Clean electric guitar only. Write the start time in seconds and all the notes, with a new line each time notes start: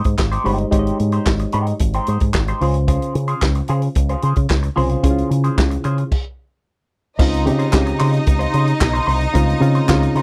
0.05 muted clean electric guitar stroke
0.18 muted clean electric guitar stroke
0.32 D#4 G4 C5
0.45 D#4 G4 C5
0.59 muted clean electric guitar stroke
0.71 D#4 G4 C5
0.98 muted clean electric guitar stroke
1.13 D#4 G4 C5
1.26 muted clean electric guitar stroke
1.40 muted clean electric guitar stroke
1.53 D#4 G4 C5
1.67 muted clean electric guitar stroke
1.81 muted clean electric guitar stroke
1.95 D#4 G4 C5
2.08 D#4 G4 C5
2.21 muted clean electric guitar stroke
2.34 muted clean electric guitar stroke
2.48 D#4 G4 C5
2.61 F4 G#4 C5
2.76 muted clean electric guitar stroke
2.88 F4 G#4 C5
3.15 muted clean electric guitar stroke
3.28 F4 G#4 C5
3.43 muted clean electric guitar stroke
3.56 muted clean electric guitar stroke
3.69 F4 G#4 C5
3.83 muted clean electric guitar stroke
3.97 muted clean electric guitar stroke
4.10 F4 G#4 C5
4.22 F4 G#4 C5
4.36 muted clean electric guitar stroke
4.49 muted clean electric guitar stroke
4.63 muted clean electric guitar stroke
4.76 F4 G#4 C5
4.89 F4 G#4 C5
5.03 F4 G#4 C5
5.30 muted clean electric guitar stroke
5.44 F4 G#4 C5
5.57 muted clean electric guitar stroke
5.71 muted clean electric guitar stroke
5.84 F4 G#4 C5
5.98 muted clean electric guitar stroke
7.19 D#4 F4 C5
7.59 D#4 F4 C5
7.72 muted clean electric guitar stroke
7.87 muted clean electric guitar stroke
7.99 D#4 F4 C5
8.13 muted clean electric guitar stroke
8.27 muted clean electric guitar stroke
8.39 D#4 F4 C5
8.53 D#4 F4 C5
8.67 muted clean electric guitar stroke
8.80 muted clean electric guitar stroke
8.93 D#4 F4 C5
9.06 D#4 F4 C5
9.20 muted clean electric guitar stroke
9.33 D#4 F4 C5
9.61 muted clean electric guitar stroke
9.75 D#4 F4 C5
9.89 muted clean electric guitar stroke
10.02 muted clean electric guitar stroke
10.16 D#4 F4 C5